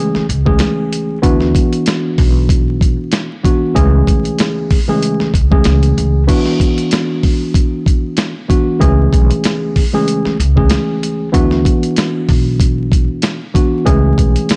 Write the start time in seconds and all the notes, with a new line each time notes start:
Already playing: C#2 E3 A3 C#4 G#4
0.15 muted upright bass stroke, snare
0.29 C#2, closed hi-hat
0.45 C#2 E3 A3 C#4 G#4, kick
0.59 snare, closed hi-hat
0.93 closed hi-hat
1.22 D2 E3 B3 D4 F#4, kick, closed hi-hat
1.41 snare
1.55 kick, closed hi-hat
1.73 closed hi-hat
1.86 snare, closed hi-hat
2.18 B1, kick, open hi-hat
2.49 kick, closed hi-hat
2.81 kick, closed hi-hat
3.12 snare, closed hi-hat
3.43 E3 B3 D4 F#4, kick, closed hi-hat
3.74 C#2 E3 A3 C#4 G#4, kick, closed hi-hat
4.07 B1, kick, closed hi-hat
4.25 closed hi-hat
4.39 snare, closed hi-hat
4.71 kick, open hi-hat
4.88 C#2 E3 A3 C#4 G#4
5.03 closed hi-hat
5.20 muted upright bass stroke, snare
5.34 C#2, kick, closed hi-hat
5.51 C#2 E3 A3 C#4 G#4, kick
5.64 C#2, snare, closed hi-hat
5.83 closed hi-hat
5.98 C#2, closed hi-hat
6.27 E3 B3 D4 F#4, kick, closed hi-hat, crash
6.46 snare
6.60 kick, closed hi-hat
6.78 closed hi-hat
6.91 snare, closed hi-hat
7.23 kick, open hi-hat
7.54 kick, closed hi-hat
7.86 kick, closed hi-hat
8.17 snare, closed hi-hat
8.48 E3 B3 D4 F#4, kick, closed hi-hat
8.79 C#2 E3 A3 C#4 G#4, kick, closed hi-hat
9.13 B1, kick, closed hi-hat
9.31 closed hi-hat
9.44 snare, closed hi-hat
9.76 kick, open hi-hat
9.93 C#2 E3 A3 C#4 G#4
10.08 closed hi-hat
10.25 muted upright bass stroke, snare
10.40 C#2, closed hi-hat
10.56 C#2 E3 A3 C#4 G#4, kick
10.70 snare, closed hi-hat
11.03 closed hi-hat
11.32 D2 E3 B3 D4 F#4, kick, closed hi-hat
11.51 snare
11.65 kick, closed hi-hat
11.83 closed hi-hat
11.96 snare, closed hi-hat
12.29 B1, kick, open hi-hat
12.60 kick, closed hi-hat
12.92 kick, closed hi-hat
13.22 snare, closed hi-hat
13.54 E3 B3 D4 F#4, kick, closed hi-hat
13.85 C#2 E3 A3 C#4 G#4, kick, closed hi-hat
14.18 B1, kick, closed hi-hat
14.36 closed hi-hat
14.49 snare, closed hi-hat